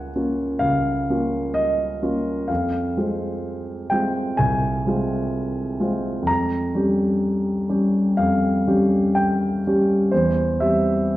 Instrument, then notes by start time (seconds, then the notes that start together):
grand piano
Already playing: C#2 A#3 C#4 F4 F#5 G#5
0.16 A#3 C#4 F4
0.59 C#2 F5
1.10 A#3 C#4 F4
1.54 D#5
2.02 A#3 C#4 F4
2.48 F2 F5
2.97 G#3 C4 F4
3.90 G#3 C4 F4 G5
4.37 C2 G#5
4.87 G#3 C4 F4
5.80 G#3 C4 F4
6.22 F2
6.27 A#5
6.75 G3 C#4 G4
7.69 G3 C#4 G4
8.17 F2 F5
8.68 G3 C#4 G4
9.15 G5
9.67 G3 C#4 G4
10.11 E2 C5
10.60 G3 C4 G4 E5